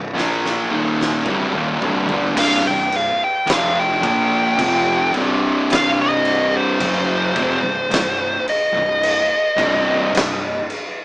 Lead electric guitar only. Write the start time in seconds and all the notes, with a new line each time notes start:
2.39 F5
2.67 G5
2.96 F5
3.24 G5
3.53 F5
3.79 G5
4.07 G5
5.72 F5
6.01 D#5
6.57 C5
8.49 D#5